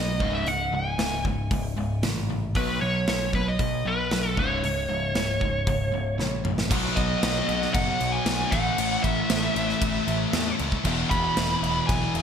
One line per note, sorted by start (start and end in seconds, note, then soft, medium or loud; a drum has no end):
0.00 0.19 B1 medium
0.00 0.18 B2 medium
0.00 0.18 F#3 medium
0.00 0.34 D#5 medium
0.20 0.45 C#1 medium
0.20 0.44 C#2 medium
0.20 0.45 G#2 medium
0.20 0.45 C#3 medium
0.20 kick medium
0.35 0.47 E5 medium
0.45 0.71 C#1 medium
0.45 0.69 C#2 medium
0.45 0.70 G#2 medium
0.45 0.74 F#5 medium
0.45 open hi-hat soft
0.71 0.97 C#1 medium
0.71 0.96 C#2 medium
0.71 0.96 G#2 medium
0.71 1.22 G#5 loud
0.98 1.49 C#1 medium
0.98 1.22 C#2 medium
0.98 1.22 G#2 medium
0.98 snare loud
0.98 open hi-hat medium
1.25 1.48 C#2 medium
1.25 1.48 G#2 medium
1.25 kick medium
1.51 1.76 C#1 medium
1.51 1.74 C#2 medium
1.51 1.75 G#2 medium
1.51 kick loud
1.51 open hi-hat medium
1.76 2.02 C#1 medium
1.76 2.01 C#2 medium
1.76 2.01 G#2 medium
2.03 2.54 A1 medium
2.03 2.27 C#2 medium
2.03 2.27 G#2 medium
2.03 snare loud
2.03 open hi-hat medium
2.30 2.53 C#2 medium
2.30 2.53 G#2 medium
2.55 2.80 B1 loud
2.55 2.80 B2 medium
2.55 2.80 F#3 medium
2.55 2.81 B3 loud
2.55 2.81 B4 medium
2.55 kick loud
2.55 open hi-hat medium
2.81 3.07 B1 medium
2.81 3.05 B2 medium
2.81 3.05 F#3 medium
2.81 3.29 C#5 loud
3.08 3.58 B1 medium
3.08 3.31 B2 medium
3.08 3.31 F#3 medium
3.08 snare loud
3.08 open hi-hat medium
3.33 3.57 B2 medium
3.33 3.57 F#3 medium
3.33 3.46 B4 medium
3.33 kick medium
3.48 3.87 D#5 loud
3.59 3.84 B1 medium
3.59 3.83 B2 medium
3.59 3.83 F#3 medium
3.59 kick loud
3.59 open hi-hat medium
3.85 4.10 B1 medium
3.85 4.09 B2 medium
3.85 4.09 F#3 medium
3.85 4.39 B4 medium
4.11 4.37 B1 medium
4.11 4.35 B2 medium
4.11 4.35 F#3 medium
4.11 snare loud
4.11 open hi-hat soft
4.37 4.62 C#1 medium
4.37 4.62 C#2 medium
4.37 4.62 G#2 medium
4.37 4.63 C#3 medium
4.37 6.42 C#5 medium
4.37 kick medium
4.62 4.88 C#1 medium
4.62 4.87 C#2 medium
4.62 4.87 G#2 medium
4.62 open hi-hat soft
4.89 5.14 C#1 medium
4.89 5.13 C#2 medium
4.89 5.13 G#2 medium
5.15 5.66 C#1 medium
5.15 5.39 C#2 medium
5.15 5.39 G#2 medium
5.15 snare loud
5.15 open hi-hat medium
5.41 5.65 C#2 medium
5.41 5.65 G#2 medium
5.41 kick medium
5.67 5.93 C#1 medium
5.67 5.91 C#2 medium
5.67 5.91 G#2 medium
5.67 kick loud
5.67 open hi-hat medium
5.93 6.18 C#1 medium
5.93 6.17 C#2 medium
5.93 6.17 G#2 medium
6.19 6.69 A#1 loud
6.19 6.43 C#2 medium
6.19 6.44 G#2 medium
6.19 snare medium
6.45 6.69 C#2 medium
6.45 6.69 G#2 medium
6.45 mid tom medium
6.58 snare medium
6.70 6.88 B1 loud
6.70 7.20 B2 loud
6.70 8.51 B2 loud
6.70 7.21 F#3 medium
6.70 8.52 F#3 medium
6.70 7.21 B3 loud
6.70 8.53 B3 loud
6.70 kick loud
6.70 crash loud
6.70 crash medium
6.96 7.14 B1 medium
6.96 7.73 D#5 medium
6.96 kick medium
6.96 crash medium
7.22 7.40 B1 medium
7.22 7.47 B2 loud
7.22 7.47 F#3 loud
7.22 7.48 B3 loud
7.22 snare loud
7.22 crash medium
7.48 7.66 B1 medium
7.48 7.72 B2 medium
7.48 7.73 F#3 medium
7.48 7.73 B3 medium
7.48 crash medium
7.62 snare soft
7.73 7.92 F#1 medium
7.73 8.25 B2 medium
7.73 8.25 F#3 loud
7.73 8.25 B3 loud
7.73 8.14 F#5 loud
7.73 kick loud
7.73 crash medium
8.00 8.18 B1 medium
8.00 crash medium
8.12 8.53 G#5 loud
8.26 8.43 B1 loud
8.26 8.51 B2 medium
8.26 8.51 F#3 medium
8.26 8.51 B3 medium
8.26 snare loud
8.26 crash medium
8.51 8.70 A1 medium
8.51 10.58 A2 medium
8.51 8.77 A2 medium
8.51 8.79 E3 loud
8.51 10.59 E3 medium
8.51 8.78 A3 loud
8.51 10.59 A3 medium
8.51 9.03 F#5 loud
8.51 kick loud
8.51 crash medium
8.78 8.96 A1 medium
8.78 9.29 A2 loud
8.78 9.31 E3 loud
8.78 9.30 A3 loud
8.78 crash medium
9.03 9.21 A1 loud
9.03 10.55 E5 medium
9.03 kick medium
9.03 crash medium
9.30 9.48 A1 medium
9.30 9.54 A2 medium
9.30 9.55 E3 loud
9.30 9.56 A3 medium
9.30 snare loud
9.30 crash medium
9.55 9.73 A1 loud
9.55 9.81 A2 medium
9.55 9.81 E3 medium
9.55 9.81 A3 medium
9.55 crash medium
9.69 snare soft
9.82 9.99 A1 medium
9.82 10.32 A2 loud
9.82 10.33 E3 loud
9.82 10.33 A3 loud
9.82 kick loud
9.82 crash medium
10.08 10.25 A1 medium
10.08 crash medium
10.33 10.51 E2 loud
10.33 10.58 A2 medium
10.33 10.59 E3 loud
10.33 10.59 A3 loud
10.33 snare loud
10.33 crash medium
10.59 10.77 C#2 loud
10.59 10.84 A2 loud
10.59 10.84 E3 loud
10.59 10.84 A3 loud
10.59 crash medium
10.72 kick medium
10.84 11.03 E1 loud
10.84 12.22 E2 loud
10.84 11.36 E2 loud
10.84 12.22 B2 loud
10.84 11.36 B2 loud
10.84 11.37 E3 loud
10.84 12.22 E3 loud
10.84 kick medium
10.84 crash medium
11.10 11.28 E1 loud
11.10 11.84 B5 loud
11.10 kick medium
11.10 crash medium
11.37 11.55 E1 loud
11.37 11.63 E2 medium
11.37 11.64 B2 loud
11.37 11.64 E3 loud
11.37 snare loud
11.37 crash medium
11.62 11.80 E1 medium
11.62 11.89 E2 medium
11.62 11.90 B2 loud
11.62 11.90 E3 loud
11.62 crash medium
11.87 12.06 B1 medium
11.87 12.22 E2 loud
11.87 12.22 B2 loud
11.87 12.22 G#5 medium
11.87 kick loud
11.87 crash medium
11.91 12.22 E3 loud
12.15 12.22 E1 loud
12.15 crash medium